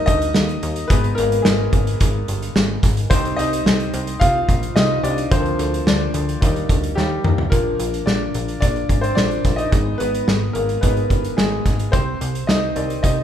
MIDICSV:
0, 0, Header, 1, 4, 480
1, 0, Start_track
1, 0, Tempo, 550964
1, 789, Time_signature, 4, 2, 24, 8
1, 11530, End_track
2, 0, Start_track
2, 0, Title_t, "Grand piano"
2, 0, Program_c, 0, 0
2, 0, Control_c, 0, 64, 127
2, 0, Note_on_c, 0, 55, 52
2, 0, Note_on_c, 0, 58, 51
2, 0, Note_on_c, 0, 63, 76
2, 0, Note_on_c, 0, 70, 101
2, 0, Note_on_c, 0, 75, 98
2, 52, Note_off_c, 0, 75, 0
2, 52, Note_on_c, 0, 75, 110
2, 70, Note_off_c, 0, 63, 0
2, 70, Note_on_c, 0, 63, 76
2, 274, Note_off_c, 0, 55, 0
2, 276, Note_off_c, 0, 58, 0
2, 746, Note_off_c, 0, 75, 0
2, 755, Note_off_c, 0, 63, 0
2, 763, Note_on_c, 0, 71, 96
2, 782, Note_on_c, 0, 56, 57
2, 788, Note_on_c, 0, 59, 75
2, 792, Note_on_c, 0, 63, 56
2, 801, Control_c, 0, 64, 0
2, 808, Note_off_c, 0, 70, 0
2, 942, Control_c, 0, 64, 127
2, 1001, Note_on_c, 0, 70, 89
2, 1017, Note_off_c, 0, 59, 0
2, 1024, Note_off_c, 0, 71, 0
2, 1032, Note_on_c, 0, 58, 67
2, 1239, Note_on_c, 0, 68, 70
2, 1254, Note_off_c, 0, 58, 0
2, 1255, Note_off_c, 0, 56, 0
2, 1263, Note_off_c, 0, 70, 0
2, 1268, Note_on_c, 0, 56, 60
2, 1476, Note_off_c, 0, 63, 0
2, 2420, Note_off_c, 0, 68, 0
2, 2434, Note_off_c, 0, 56, 0
2, 2700, Note_on_c, 0, 72, 90
2, 2704, Note_on_c, 0, 55, 58
2, 2709, Note_on_c, 0, 60, 73
2, 2713, Note_on_c, 0, 63, 61
2, 2720, Control_c, 0, 64, 0
2, 2855, Control_c, 0, 64, 127
2, 2928, Note_off_c, 0, 72, 0
2, 2931, Note_on_c, 0, 75, 94
2, 2935, Note_off_c, 0, 60, 0
2, 2935, Note_off_c, 0, 63, 0
2, 2948, Note_on_c, 0, 63, 75
2, 3392, Note_off_c, 0, 55, 0
2, 3635, Note_off_c, 0, 63, 0
2, 3656, Note_on_c, 0, 77, 101
2, 3668, Note_on_c, 0, 65, 77
2, 3683, Note_off_c, 0, 75, 0
2, 4116, Note_off_c, 0, 65, 0
2, 4144, Note_on_c, 0, 75, 95
2, 4154, Note_on_c, 0, 63, 74
2, 4158, Note_off_c, 0, 77, 0
2, 4376, Note_off_c, 0, 63, 0
2, 4386, Note_on_c, 0, 74, 83
2, 4394, Note_off_c, 0, 75, 0
2, 4396, Note_on_c, 0, 62, 68
2, 4440, Note_off_c, 0, 74, 0
2, 4449, Note_off_c, 0, 62, 0
2, 4625, Note_on_c, 0, 53, 56
2, 4630, Note_on_c, 0, 72, 87
2, 4631, Note_on_c, 0, 58, 47
2, 4637, Note_on_c, 0, 62, 59
2, 4638, Note_on_c, 0, 60, 66
2, 4642, Control_c, 0, 64, 0
2, 4808, Control_c, 0, 64, 127
2, 5081, Note_off_c, 0, 60, 0
2, 5111, Note_on_c, 0, 74, 73
2, 5112, Note_off_c, 0, 62, 0
2, 5125, Note_off_c, 0, 72, 0
2, 5125, Note_on_c, 0, 62, 60
2, 5314, Note_off_c, 0, 53, 0
2, 5316, Note_off_c, 0, 58, 0
2, 5583, Note_on_c, 0, 55, 53
2, 5589, Note_on_c, 0, 58, 48
2, 5594, Note_on_c, 0, 63, 57
2, 5604, Control_c, 0, 64, 0
2, 5777, Control_c, 0, 64, 127
2, 5797, Note_off_c, 0, 74, 0
2, 5804, Note_off_c, 0, 62, 0
2, 5906, Note_off_c, 0, 55, 0
2, 5909, Note_off_c, 0, 58, 0
2, 5912, Note_off_c, 0, 63, 0
2, 6058, Note_on_c, 0, 67, 82
2, 6080, Note_on_c, 0, 55, 63
2, 6511, Note_off_c, 0, 67, 0
2, 6523, Note_off_c, 0, 55, 0
2, 6533, Note_on_c, 0, 70, 81
2, 6542, Note_on_c, 0, 53, 46
2, 6548, Note_on_c, 0, 58, 66
2, 6552, Note_on_c, 0, 62, 51
2, 6562, Control_c, 0, 64, 0
2, 6711, Control_c, 0, 64, 127
2, 6866, Note_off_c, 0, 53, 0
2, 6871, Note_off_c, 0, 62, 0
2, 6999, Note_off_c, 0, 58, 0
2, 7020, Note_on_c, 0, 74, 83
2, 7038, Note_off_c, 0, 70, 0
2, 7038, Note_on_c, 0, 62, 60
2, 7473, Note_off_c, 0, 74, 0
2, 7482, Note_off_c, 0, 62, 0
2, 7497, Note_on_c, 0, 74, 87
2, 7518, Note_on_c, 0, 62, 63
2, 7839, Note_off_c, 0, 74, 0
2, 7850, Note_off_c, 0, 62, 0
2, 7853, Note_on_c, 0, 72, 79
2, 7874, Note_on_c, 0, 60, 63
2, 7974, Note_off_c, 0, 72, 0
2, 7974, Note_on_c, 0, 74, 89
2, 7985, Note_off_c, 0, 60, 0
2, 7993, Note_on_c, 0, 62, 68
2, 8328, Note_off_c, 0, 62, 0
2, 8331, Note_on_c, 0, 75, 85
2, 8351, Note_on_c, 0, 63, 64
2, 8355, Note_off_c, 0, 74, 0
2, 8457, Note_off_c, 0, 63, 0
2, 8459, Note_on_c, 0, 56, 47
2, 8467, Note_on_c, 0, 59, 44
2, 8471, Note_on_c, 0, 63, 52
2, 8483, Control_c, 0, 64, 0
2, 8613, Control_c, 0, 64, 127
2, 8676, Note_off_c, 0, 75, 0
2, 8694, Note_on_c, 0, 71, 89
2, 8697, Note_off_c, 0, 59, 0
2, 8710, Note_on_c, 0, 59, 70
2, 8785, Note_off_c, 0, 56, 0
2, 8791, Note_off_c, 0, 63, 0
2, 9149, Note_off_c, 0, 71, 0
2, 9158, Note_off_c, 0, 59, 0
2, 9176, Note_on_c, 0, 70, 79
2, 9194, Note_on_c, 0, 58, 59
2, 9417, Note_off_c, 0, 58, 0
2, 9419, Note_on_c, 0, 71, 83
2, 9426, Note_on_c, 0, 56, 41
2, 9430, Note_on_c, 0, 59, 66
2, 9432, Note_off_c, 0, 70, 0
2, 9432, Note_on_c, 0, 63, 46
2, 9645, Note_off_c, 0, 56, 0
2, 9649, Note_off_c, 0, 63, 0
2, 9881, Note_off_c, 0, 59, 0
2, 9904, Note_on_c, 0, 68, 78
2, 9921, Note_off_c, 0, 71, 0
2, 9922, Note_on_c, 0, 56, 61
2, 10364, Note_off_c, 0, 56, 0
2, 10384, Note_on_c, 0, 72, 90
2, 10400, Note_on_c, 0, 60, 67
2, 10403, Note_off_c, 0, 68, 0
2, 10406, Control_c, 0, 64, 0
2, 10542, Control_c, 0, 64, 127
2, 10843, Note_off_c, 0, 60, 0
2, 10867, Note_on_c, 0, 75, 78
2, 10883, Note_off_c, 0, 72, 0
2, 10883, Note_on_c, 0, 63, 65
2, 11108, Note_on_c, 0, 51, 51
2, 11113, Note_on_c, 0, 60, 47
2, 11118, Note_on_c, 0, 74, 54
2, 11316, Note_off_c, 0, 75, 0
2, 11325, Note_off_c, 0, 63, 0
2, 11350, Note_on_c, 0, 75, 85
2, 11361, Note_on_c, 0, 63, 64
2, 11530, Note_off_c, 0, 51, 0
2, 11530, Note_off_c, 0, 60, 0
2, 11530, Note_off_c, 0, 63, 0
2, 11530, Note_off_c, 0, 74, 0
2, 11530, Note_off_c, 0, 75, 0
2, 11530, End_track
3, 0, Start_track
3, 0, Title_t, "Analog synth bass"
3, 0, Program_c, 1, 38
3, 66, Note_on_c, 1, 38, 92
3, 264, Note_off_c, 1, 38, 0
3, 310, Note_on_c, 1, 39, 105
3, 507, Note_off_c, 1, 39, 0
3, 548, Note_on_c, 1, 39, 93
3, 745, Note_off_c, 1, 39, 0
3, 787, Note_on_c, 1, 32, 103
3, 984, Note_off_c, 1, 32, 0
3, 1034, Note_on_c, 1, 32, 101
3, 1229, Note_off_c, 1, 32, 0
3, 1271, Note_on_c, 1, 32, 105
3, 1467, Note_off_c, 1, 32, 0
3, 1505, Note_on_c, 1, 32, 94
3, 1704, Note_off_c, 1, 32, 0
3, 1751, Note_on_c, 1, 32, 100
3, 1947, Note_off_c, 1, 32, 0
3, 1989, Note_on_c, 1, 31, 86
3, 2186, Note_off_c, 1, 31, 0
3, 2229, Note_on_c, 1, 32, 88
3, 2426, Note_off_c, 1, 32, 0
3, 2466, Note_on_c, 1, 32, 100
3, 2665, Note_off_c, 1, 32, 0
3, 2706, Note_on_c, 1, 36, 111
3, 2904, Note_off_c, 1, 36, 0
3, 2951, Note_on_c, 1, 36, 103
3, 3147, Note_off_c, 1, 36, 0
3, 3188, Note_on_c, 1, 36, 98
3, 3386, Note_off_c, 1, 36, 0
3, 3430, Note_on_c, 1, 36, 92
3, 3627, Note_off_c, 1, 36, 0
3, 3672, Note_on_c, 1, 36, 102
3, 3868, Note_off_c, 1, 36, 0
3, 3910, Note_on_c, 1, 34, 89
3, 4107, Note_off_c, 1, 34, 0
3, 4147, Note_on_c, 1, 36, 92
3, 4346, Note_off_c, 1, 36, 0
3, 4385, Note_on_c, 1, 36, 102
3, 4584, Note_off_c, 1, 36, 0
3, 4630, Note_on_c, 1, 38, 102
3, 4827, Note_off_c, 1, 38, 0
3, 4871, Note_on_c, 1, 38, 91
3, 5068, Note_off_c, 1, 38, 0
3, 5109, Note_on_c, 1, 38, 94
3, 5306, Note_off_c, 1, 38, 0
3, 5350, Note_on_c, 1, 38, 98
3, 5547, Note_off_c, 1, 38, 0
3, 5596, Note_on_c, 1, 39, 95
3, 5791, Note_off_c, 1, 39, 0
3, 5832, Note_on_c, 1, 38, 82
3, 6028, Note_off_c, 1, 38, 0
3, 6072, Note_on_c, 1, 39, 100
3, 6269, Note_off_c, 1, 39, 0
3, 6311, Note_on_c, 1, 39, 100
3, 6508, Note_off_c, 1, 39, 0
3, 6553, Note_on_c, 1, 34, 95
3, 6749, Note_off_c, 1, 34, 0
3, 6791, Note_on_c, 1, 34, 84
3, 6988, Note_off_c, 1, 34, 0
3, 7028, Note_on_c, 1, 34, 101
3, 7227, Note_off_c, 1, 34, 0
3, 7270, Note_on_c, 1, 34, 83
3, 7468, Note_off_c, 1, 34, 0
3, 7513, Note_on_c, 1, 34, 88
3, 7710, Note_off_c, 1, 34, 0
3, 7750, Note_on_c, 1, 32, 82
3, 7948, Note_off_c, 1, 32, 0
3, 7994, Note_on_c, 1, 34, 96
3, 8191, Note_off_c, 1, 34, 0
3, 8231, Note_on_c, 1, 34, 91
3, 8429, Note_off_c, 1, 34, 0
3, 8472, Note_on_c, 1, 32, 94
3, 8670, Note_off_c, 1, 32, 0
3, 8712, Note_on_c, 1, 32, 85
3, 8910, Note_off_c, 1, 32, 0
3, 8953, Note_on_c, 1, 32, 98
3, 9150, Note_off_c, 1, 32, 0
3, 9194, Note_on_c, 1, 32, 92
3, 9391, Note_off_c, 1, 32, 0
3, 9436, Note_on_c, 1, 32, 100
3, 9632, Note_off_c, 1, 32, 0
3, 9673, Note_on_c, 1, 31, 79
3, 9870, Note_off_c, 1, 31, 0
3, 9920, Note_on_c, 1, 32, 97
3, 10114, Note_off_c, 1, 32, 0
3, 10155, Note_on_c, 1, 32, 95
3, 10352, Note_off_c, 1, 32, 0
3, 10394, Note_on_c, 1, 36, 94
3, 10591, Note_off_c, 1, 36, 0
3, 10639, Note_on_c, 1, 36, 93
3, 10834, Note_off_c, 1, 36, 0
3, 10879, Note_on_c, 1, 36, 91
3, 11074, Note_off_c, 1, 36, 0
3, 11120, Note_on_c, 1, 36, 90
3, 11314, Note_off_c, 1, 36, 0
3, 11360, Note_on_c, 1, 36, 92
3, 11530, Note_off_c, 1, 36, 0
3, 11530, End_track
4, 0, Start_track
4, 0, Title_t, "Drums"
4, 66, Note_on_c, 9, 36, 84
4, 70, Note_on_c, 9, 42, 63
4, 154, Note_off_c, 9, 36, 0
4, 158, Note_off_c, 9, 42, 0
4, 189, Note_on_c, 9, 42, 51
4, 276, Note_off_c, 9, 42, 0
4, 301, Note_on_c, 9, 38, 102
4, 388, Note_off_c, 9, 38, 0
4, 426, Note_on_c, 9, 42, 32
4, 513, Note_off_c, 9, 42, 0
4, 546, Note_on_c, 9, 42, 65
4, 633, Note_off_c, 9, 42, 0
4, 661, Note_on_c, 9, 42, 47
4, 749, Note_off_c, 9, 42, 0
4, 784, Note_on_c, 9, 42, 86
4, 786, Note_on_c, 9, 36, 117
4, 871, Note_off_c, 9, 42, 0
4, 873, Note_off_c, 9, 36, 0
4, 906, Note_on_c, 9, 42, 36
4, 994, Note_off_c, 9, 42, 0
4, 1026, Note_on_c, 9, 42, 73
4, 1113, Note_off_c, 9, 42, 0
4, 1151, Note_on_c, 9, 42, 51
4, 1238, Note_off_c, 9, 42, 0
4, 1263, Note_on_c, 9, 38, 115
4, 1350, Note_off_c, 9, 38, 0
4, 1506, Note_on_c, 9, 36, 83
4, 1506, Note_on_c, 9, 42, 63
4, 1593, Note_off_c, 9, 36, 0
4, 1593, Note_off_c, 9, 42, 0
4, 1630, Note_on_c, 9, 42, 47
4, 1717, Note_off_c, 9, 42, 0
4, 1747, Note_on_c, 9, 42, 87
4, 1749, Note_on_c, 9, 36, 95
4, 1834, Note_off_c, 9, 42, 0
4, 1836, Note_off_c, 9, 36, 0
4, 1989, Note_on_c, 9, 42, 63
4, 2076, Note_off_c, 9, 42, 0
4, 2111, Note_on_c, 9, 42, 47
4, 2199, Note_off_c, 9, 42, 0
4, 2228, Note_on_c, 9, 38, 104
4, 2315, Note_off_c, 9, 38, 0
4, 2466, Note_on_c, 9, 36, 93
4, 2467, Note_on_c, 9, 38, 34
4, 2468, Note_on_c, 9, 42, 63
4, 2553, Note_off_c, 9, 36, 0
4, 2554, Note_off_c, 9, 38, 0
4, 2556, Note_off_c, 9, 42, 0
4, 2587, Note_on_c, 9, 42, 45
4, 2674, Note_off_c, 9, 42, 0
4, 2707, Note_on_c, 9, 36, 118
4, 2707, Note_on_c, 9, 42, 83
4, 2794, Note_off_c, 9, 36, 0
4, 2794, Note_off_c, 9, 42, 0
4, 2834, Note_on_c, 9, 42, 35
4, 2921, Note_off_c, 9, 42, 0
4, 2953, Note_on_c, 9, 42, 77
4, 3040, Note_off_c, 9, 42, 0
4, 3075, Note_on_c, 9, 42, 53
4, 3162, Note_off_c, 9, 42, 0
4, 3191, Note_on_c, 9, 38, 108
4, 3279, Note_off_c, 9, 38, 0
4, 3310, Note_on_c, 9, 42, 35
4, 3397, Note_off_c, 9, 42, 0
4, 3429, Note_on_c, 9, 42, 64
4, 3516, Note_off_c, 9, 42, 0
4, 3548, Note_on_c, 9, 42, 49
4, 3636, Note_off_c, 9, 42, 0
4, 3670, Note_on_c, 9, 36, 93
4, 3670, Note_on_c, 9, 42, 82
4, 3757, Note_off_c, 9, 42, 0
4, 3758, Note_off_c, 9, 36, 0
4, 3908, Note_on_c, 9, 36, 87
4, 3914, Note_on_c, 9, 42, 61
4, 3995, Note_off_c, 9, 36, 0
4, 4002, Note_off_c, 9, 42, 0
4, 4032, Note_on_c, 9, 42, 47
4, 4119, Note_off_c, 9, 42, 0
4, 4151, Note_on_c, 9, 38, 105
4, 4238, Note_off_c, 9, 38, 0
4, 4394, Note_on_c, 9, 42, 69
4, 4481, Note_off_c, 9, 42, 0
4, 4512, Note_on_c, 9, 42, 47
4, 4599, Note_off_c, 9, 42, 0
4, 4631, Note_on_c, 9, 36, 116
4, 4631, Note_on_c, 9, 42, 85
4, 4718, Note_off_c, 9, 36, 0
4, 4718, Note_off_c, 9, 42, 0
4, 4754, Note_on_c, 9, 42, 35
4, 4841, Note_off_c, 9, 42, 0
4, 4872, Note_on_c, 9, 42, 76
4, 4959, Note_off_c, 9, 42, 0
4, 5000, Note_on_c, 9, 42, 52
4, 5087, Note_off_c, 9, 42, 0
4, 5114, Note_on_c, 9, 38, 107
4, 5201, Note_off_c, 9, 38, 0
4, 5350, Note_on_c, 9, 42, 62
4, 5437, Note_off_c, 9, 42, 0
4, 5478, Note_on_c, 9, 42, 46
4, 5565, Note_off_c, 9, 42, 0
4, 5596, Note_on_c, 9, 36, 100
4, 5596, Note_on_c, 9, 42, 85
4, 5683, Note_off_c, 9, 36, 0
4, 5683, Note_off_c, 9, 42, 0
4, 5716, Note_on_c, 9, 42, 33
4, 5803, Note_off_c, 9, 42, 0
4, 5832, Note_on_c, 9, 36, 85
4, 5836, Note_on_c, 9, 42, 65
4, 5919, Note_off_c, 9, 36, 0
4, 5923, Note_off_c, 9, 42, 0
4, 5955, Note_on_c, 9, 42, 48
4, 6042, Note_off_c, 9, 42, 0
4, 6076, Note_on_c, 9, 38, 57
4, 6163, Note_off_c, 9, 38, 0
4, 6311, Note_on_c, 9, 45, 92
4, 6399, Note_off_c, 9, 45, 0
4, 6432, Note_on_c, 9, 43, 84
4, 6519, Note_off_c, 9, 43, 0
4, 6551, Note_on_c, 9, 36, 99
4, 6552, Note_on_c, 9, 42, 73
4, 6638, Note_off_c, 9, 36, 0
4, 6639, Note_off_c, 9, 42, 0
4, 6791, Note_on_c, 9, 42, 67
4, 6879, Note_off_c, 9, 42, 0
4, 6916, Note_on_c, 9, 42, 46
4, 7003, Note_off_c, 9, 42, 0
4, 7032, Note_on_c, 9, 38, 92
4, 7119, Note_off_c, 9, 38, 0
4, 7270, Note_on_c, 9, 42, 56
4, 7357, Note_off_c, 9, 42, 0
4, 7391, Note_on_c, 9, 42, 42
4, 7478, Note_off_c, 9, 42, 0
4, 7510, Note_on_c, 9, 42, 78
4, 7512, Note_on_c, 9, 36, 82
4, 7597, Note_off_c, 9, 42, 0
4, 7599, Note_off_c, 9, 36, 0
4, 7631, Note_on_c, 9, 42, 28
4, 7718, Note_off_c, 9, 42, 0
4, 7749, Note_on_c, 9, 36, 75
4, 7750, Note_on_c, 9, 42, 58
4, 7836, Note_off_c, 9, 36, 0
4, 7838, Note_off_c, 9, 42, 0
4, 7872, Note_on_c, 9, 42, 43
4, 7959, Note_off_c, 9, 42, 0
4, 7987, Note_on_c, 9, 38, 88
4, 8074, Note_off_c, 9, 38, 0
4, 8111, Note_on_c, 9, 42, 29
4, 8199, Note_off_c, 9, 42, 0
4, 8227, Note_on_c, 9, 38, 31
4, 8229, Note_on_c, 9, 42, 58
4, 8230, Note_on_c, 9, 36, 80
4, 8315, Note_off_c, 9, 38, 0
4, 8317, Note_off_c, 9, 36, 0
4, 8317, Note_off_c, 9, 42, 0
4, 8349, Note_on_c, 9, 42, 39
4, 8436, Note_off_c, 9, 42, 0
4, 8472, Note_on_c, 9, 36, 99
4, 8472, Note_on_c, 9, 42, 73
4, 8559, Note_off_c, 9, 36, 0
4, 8559, Note_off_c, 9, 42, 0
4, 8714, Note_on_c, 9, 42, 66
4, 8801, Note_off_c, 9, 42, 0
4, 8838, Note_on_c, 9, 42, 46
4, 8925, Note_off_c, 9, 42, 0
4, 8954, Note_on_c, 9, 38, 97
4, 9041, Note_off_c, 9, 38, 0
4, 9190, Note_on_c, 9, 42, 54
4, 9277, Note_off_c, 9, 42, 0
4, 9313, Note_on_c, 9, 42, 41
4, 9401, Note_off_c, 9, 42, 0
4, 9432, Note_on_c, 9, 42, 76
4, 9435, Note_on_c, 9, 36, 81
4, 9519, Note_off_c, 9, 42, 0
4, 9522, Note_off_c, 9, 36, 0
4, 9554, Note_on_c, 9, 42, 30
4, 9642, Note_off_c, 9, 42, 0
4, 9673, Note_on_c, 9, 36, 73
4, 9676, Note_on_c, 9, 42, 57
4, 9760, Note_off_c, 9, 36, 0
4, 9763, Note_off_c, 9, 42, 0
4, 9796, Note_on_c, 9, 42, 45
4, 9883, Note_off_c, 9, 42, 0
4, 9913, Note_on_c, 9, 38, 94
4, 10000, Note_off_c, 9, 38, 0
4, 10154, Note_on_c, 9, 38, 30
4, 10155, Note_on_c, 9, 36, 77
4, 10156, Note_on_c, 9, 42, 58
4, 10241, Note_off_c, 9, 38, 0
4, 10242, Note_off_c, 9, 36, 0
4, 10243, Note_off_c, 9, 42, 0
4, 10275, Note_on_c, 9, 42, 42
4, 10362, Note_off_c, 9, 42, 0
4, 10395, Note_on_c, 9, 36, 100
4, 10397, Note_on_c, 9, 42, 73
4, 10482, Note_off_c, 9, 36, 0
4, 10484, Note_off_c, 9, 42, 0
4, 10639, Note_on_c, 9, 42, 68
4, 10726, Note_off_c, 9, 42, 0
4, 10761, Note_on_c, 9, 42, 46
4, 10848, Note_off_c, 9, 42, 0
4, 10879, Note_on_c, 9, 38, 100
4, 10966, Note_off_c, 9, 38, 0
4, 11116, Note_on_c, 9, 42, 58
4, 11203, Note_off_c, 9, 42, 0
4, 11239, Note_on_c, 9, 42, 42
4, 11326, Note_off_c, 9, 42, 0
4, 11358, Note_on_c, 9, 36, 86
4, 11359, Note_on_c, 9, 42, 77
4, 11445, Note_off_c, 9, 36, 0
4, 11446, Note_off_c, 9, 42, 0
4, 11530, End_track
0, 0, End_of_file